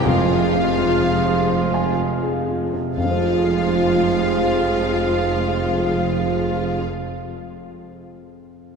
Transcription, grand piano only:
\new Staff \with { instrumentName = "Grand piano" } { \time 3/4 \key f \minor \tempo 4 = 62 f,16 c16 c'16 f'16 aes'16 c''16 f''16 aes''16 f''16 aes'16 f'16 c16 | <f, f c' f' aes' f''>2.~ | <f, f c' f' aes' f''>2. | }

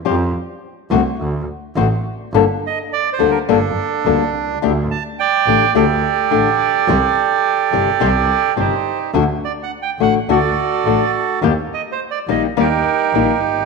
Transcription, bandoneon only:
\new Staff \with { instrumentName = "Bandoneon" } { \time 4/4 \key d \phrygian \tempo 4 = 106 << { r1 | \key g \minor r8 ees''8 \tuplet 3/2 { d''8 c''8 bes'8 } a'4. r8 | r8 a''8 g''4 d''2~ | d''2. c''8. r16 |
\tuplet 3/2 { r8. d''8 fis''16~ fis''16 g''8 fis''8. } d''4. r8 | \tuplet 3/2 { r8. ees''8 c''16~ c''16 d''8 ees''8. } bes'4. r8 | } \\ { r1 | r2 d'2 | r4 d''4 <g' a'>2~ | <g' a'>2. <ees' g'>4 |
r2 <fis' a'>2 | r2 <ees' g'>2 | } >> }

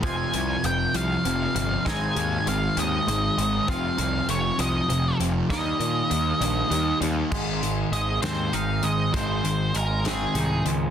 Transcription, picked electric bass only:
\new Staff \with { instrumentName = "Picked electric bass" } { \clef bass \time 6/8 \key aes \major \tempo 4. = 66 f,,8 c,8 f,,8 c,8 f,,8 g,,8 | aes,,8 ees,8 aes,,8 ees,8 aes,,8 aes,,8 | f,,8 c,8 f,,8 c,8 f,,8 f,,8 | ees,8 bes,8 ees,8 bes,,8 ees,8 ees,8 |
aes,,4 aes,,8 ees,8 aes,,8 aes,,8 | aes,,8 aes,,8 aes,,4 c,8 des,8 | }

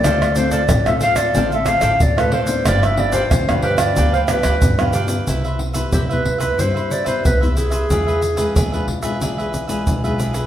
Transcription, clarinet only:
\new Staff \with { instrumentName = "Clarinet" } { \time 4/4 \key c \major \tempo 4 = 91 d''8 c''16 d''8 e''16 f''16 d''8 e''16 f''8 d''16 b'16 c''8 | d''16 e''16 d''16 c''8. b'16 d''8 c''16 b'4 r8 | r4 g'16 b'8 b'16 c''8 d''16 c''16 b'8 aes'8~ | aes'4. r2 r8 | }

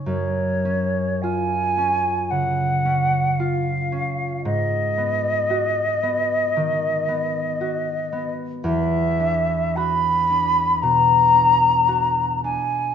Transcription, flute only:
\new Staff \with { instrumentName = "Flute" } { \time 4/4 \key fis \major \tempo 4 = 56 cis''4 gis''4 fis''4 eis''4 | dis''2.~ dis''8. r16 | e''4 b''4 ais''4. gis''8 | }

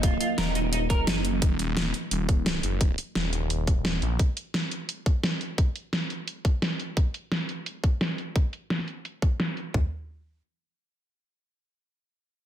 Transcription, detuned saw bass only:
\new Staff \with { instrumentName = "Detuned saw bass" } { \clef bass \time 4/4 \key ees \minor \tempo 4 = 173 ges,,8 r8 ees,,4. ees,,8 ges,,4 | ees,,8 ees,,4 r8 ees,,4. ges,,8~ | ges,,8 r8 ees,,2~ ees,,8 bes,,8 | r1 |
r1 | r1 | r1 | r1 |
r1 | }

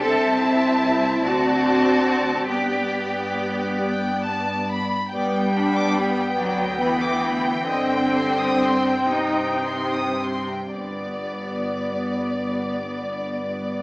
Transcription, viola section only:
\new Staff \with { instrumentName = "Viola section" } { \time 6/8 \key g \major \tempo 4. = 46 c'4. c'4. | b2~ b8. r16 | b8 d'8 b2 | c'4. ees'8. r8. |
b2. | }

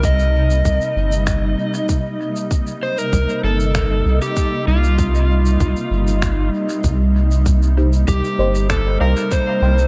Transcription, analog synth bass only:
\new Staff \with { instrumentName = "Analog synth bass" } { \clef bass \time 4/4 \key c \dorian \tempo 4 = 97 c,4 c,8 g,,4 r4. | r4 c,8 g,,4 c,8 r8 c,8~ | c,4 c,8 g,,4 r8 c,4~ | c,4 c,8 g,,4 c,8 r8 c,8 | }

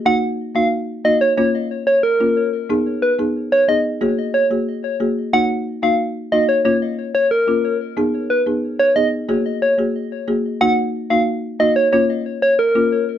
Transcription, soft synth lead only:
\new Staff \with { instrumentName = "Soft synth lead" } { \time 4/4 \key ees \minor \tempo 4 = 91 ges''16 r8 f''16 r8 ees''16 des''16 des''16 r8 des''16 bes'8. r16 | r8 ces''16 r8 des''16 ees''16 r8. des''16 r4 r16 | ges''16 r8 f''16 r8 ees''16 des''16 des''16 r8 des''16 bes'8. r16 | r8 ces''16 r8 des''16 ees''16 r8. des''16 r4 r16 |
ges''16 r8 f''16 r8 ees''16 des''16 des''16 r8 des''16 bes'8. r16 | }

